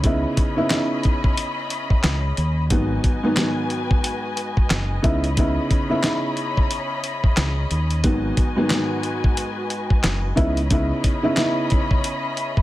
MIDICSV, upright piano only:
0, 0, Header, 1, 2, 480
1, 0, Start_track
1, 0, Tempo, 666667
1, 30, Time_signature, 4, 2, 24, 8
1, 9087, End_track
2, 0, Start_track
2, 0, Title_t, "Upright piano"
2, 0, Program_c, 0, 0
2, 35, Note_on_c, 0, 49, 104
2, 38, Note_on_c, 0, 59, 81
2, 41, Note_on_c, 0, 63, 79
2, 45, Note_on_c, 0, 64, 98
2, 381, Note_off_c, 0, 49, 0
2, 382, Note_off_c, 0, 59, 0
2, 384, Note_off_c, 0, 63, 0
2, 386, Note_off_c, 0, 64, 0
2, 405, Note_on_c, 0, 49, 93
2, 409, Note_on_c, 0, 59, 84
2, 412, Note_on_c, 0, 63, 81
2, 415, Note_on_c, 0, 64, 111
2, 497, Note_off_c, 0, 49, 0
2, 500, Note_off_c, 0, 59, 0
2, 503, Note_off_c, 0, 63, 0
2, 506, Note_off_c, 0, 64, 0
2, 507, Note_on_c, 0, 49, 90
2, 511, Note_on_c, 0, 59, 74
2, 514, Note_on_c, 0, 63, 88
2, 517, Note_on_c, 0, 64, 98
2, 1726, Note_off_c, 0, 49, 0
2, 1728, Note_off_c, 0, 59, 0
2, 1729, Note_off_c, 0, 63, 0
2, 1731, Note_off_c, 0, 64, 0
2, 1947, Note_on_c, 0, 44, 91
2, 1950, Note_on_c, 0, 51, 84
2, 1954, Note_on_c, 0, 54, 82
2, 1956, Note_on_c, 0, 59, 99
2, 2297, Note_off_c, 0, 44, 0
2, 2298, Note_off_c, 0, 51, 0
2, 2300, Note_off_c, 0, 54, 0
2, 2301, Note_off_c, 0, 59, 0
2, 2327, Note_on_c, 0, 44, 102
2, 2330, Note_on_c, 0, 51, 79
2, 2333, Note_on_c, 0, 54, 80
2, 2337, Note_on_c, 0, 59, 109
2, 2419, Note_off_c, 0, 44, 0
2, 2422, Note_off_c, 0, 51, 0
2, 2426, Note_off_c, 0, 54, 0
2, 2429, Note_off_c, 0, 59, 0
2, 2430, Note_on_c, 0, 44, 92
2, 2433, Note_on_c, 0, 51, 85
2, 2437, Note_on_c, 0, 54, 81
2, 2440, Note_on_c, 0, 59, 97
2, 3609, Note_off_c, 0, 59, 0
2, 3616, Note_on_c, 0, 49, 93
2, 3620, Note_on_c, 0, 59, 82
2, 3623, Note_on_c, 0, 63, 83
2, 3627, Note_on_c, 0, 64, 99
2, 3630, Note_off_c, 0, 44, 0
2, 3632, Note_off_c, 0, 51, 0
2, 3633, Note_off_c, 0, 54, 0
2, 3785, Note_off_c, 0, 49, 0
2, 3787, Note_off_c, 0, 59, 0
2, 3788, Note_off_c, 0, 63, 0
2, 3790, Note_off_c, 0, 64, 0
2, 3876, Note_on_c, 0, 49, 104
2, 3879, Note_on_c, 0, 59, 81
2, 3882, Note_on_c, 0, 63, 80
2, 3886, Note_on_c, 0, 64, 100
2, 4221, Note_off_c, 0, 49, 0
2, 4223, Note_off_c, 0, 59, 0
2, 4224, Note_off_c, 0, 63, 0
2, 4226, Note_off_c, 0, 64, 0
2, 4244, Note_on_c, 0, 49, 96
2, 4247, Note_on_c, 0, 59, 84
2, 4251, Note_on_c, 0, 63, 80
2, 4255, Note_on_c, 0, 64, 105
2, 4336, Note_off_c, 0, 49, 0
2, 4339, Note_off_c, 0, 59, 0
2, 4343, Note_off_c, 0, 63, 0
2, 4346, Note_off_c, 0, 64, 0
2, 4347, Note_on_c, 0, 49, 97
2, 4350, Note_on_c, 0, 59, 76
2, 4354, Note_on_c, 0, 63, 88
2, 4357, Note_on_c, 0, 64, 97
2, 5565, Note_off_c, 0, 49, 0
2, 5567, Note_off_c, 0, 59, 0
2, 5569, Note_off_c, 0, 63, 0
2, 5570, Note_off_c, 0, 64, 0
2, 5785, Note_on_c, 0, 44, 92
2, 5788, Note_on_c, 0, 51, 83
2, 5792, Note_on_c, 0, 54, 83
2, 5794, Note_on_c, 0, 59, 101
2, 6136, Note_off_c, 0, 44, 0
2, 6137, Note_off_c, 0, 51, 0
2, 6139, Note_off_c, 0, 54, 0
2, 6140, Note_off_c, 0, 59, 0
2, 6164, Note_on_c, 0, 44, 101
2, 6168, Note_on_c, 0, 51, 84
2, 6171, Note_on_c, 0, 54, 82
2, 6174, Note_on_c, 0, 59, 110
2, 6257, Note_off_c, 0, 44, 0
2, 6260, Note_off_c, 0, 51, 0
2, 6264, Note_off_c, 0, 54, 0
2, 6267, Note_off_c, 0, 59, 0
2, 6268, Note_on_c, 0, 44, 95
2, 6271, Note_on_c, 0, 51, 88
2, 6275, Note_on_c, 0, 54, 81
2, 6278, Note_on_c, 0, 59, 98
2, 7448, Note_off_c, 0, 59, 0
2, 7455, Note_on_c, 0, 49, 93
2, 7459, Note_on_c, 0, 59, 86
2, 7461, Note_on_c, 0, 63, 83
2, 7465, Note_on_c, 0, 64, 101
2, 7469, Note_off_c, 0, 44, 0
2, 7470, Note_off_c, 0, 51, 0
2, 7472, Note_off_c, 0, 54, 0
2, 7625, Note_off_c, 0, 49, 0
2, 7626, Note_off_c, 0, 59, 0
2, 7628, Note_off_c, 0, 63, 0
2, 7629, Note_off_c, 0, 64, 0
2, 7714, Note_on_c, 0, 49, 101
2, 7717, Note_on_c, 0, 59, 82
2, 7720, Note_on_c, 0, 63, 82
2, 7724, Note_on_c, 0, 64, 97
2, 8060, Note_off_c, 0, 49, 0
2, 8062, Note_off_c, 0, 59, 0
2, 8063, Note_off_c, 0, 63, 0
2, 8065, Note_off_c, 0, 64, 0
2, 8084, Note_on_c, 0, 49, 99
2, 8087, Note_on_c, 0, 59, 84
2, 8091, Note_on_c, 0, 63, 86
2, 8094, Note_on_c, 0, 64, 110
2, 8176, Note_off_c, 0, 49, 0
2, 8179, Note_off_c, 0, 59, 0
2, 8182, Note_off_c, 0, 63, 0
2, 8185, Note_off_c, 0, 64, 0
2, 8187, Note_on_c, 0, 49, 95
2, 8190, Note_on_c, 0, 59, 80
2, 8193, Note_on_c, 0, 63, 88
2, 8196, Note_on_c, 0, 64, 97
2, 9087, Note_off_c, 0, 49, 0
2, 9087, Note_off_c, 0, 59, 0
2, 9087, Note_off_c, 0, 63, 0
2, 9087, Note_off_c, 0, 64, 0
2, 9087, End_track
0, 0, End_of_file